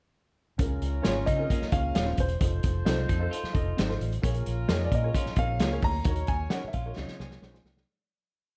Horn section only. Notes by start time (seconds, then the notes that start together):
0.60 C#4 F4 A#4
2.42 F4 A4 C5
4.23 C#4 F4 A#4
6.07 F#4 A#4 C#5
6.97 F4 G#4 C#5